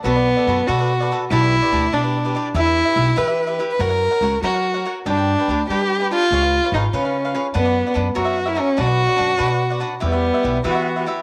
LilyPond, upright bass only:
\new Staff \with { instrumentName = "Upright bass" } { \clef bass \time 6/8 \key b \minor \tempo 4. = 96 b,,4 fis,8 b,4. | b,,4 d,8 b,4. | e,4 b,,8 r4. | fis,4 cis,8 fis4. |
g,4 d,8 g4. | cis,4 gis,,8 cis4. | fis,4 fis,8 fis,4. | b,,4 fis,8 b,4. |
e,4 b,,8 e4. | }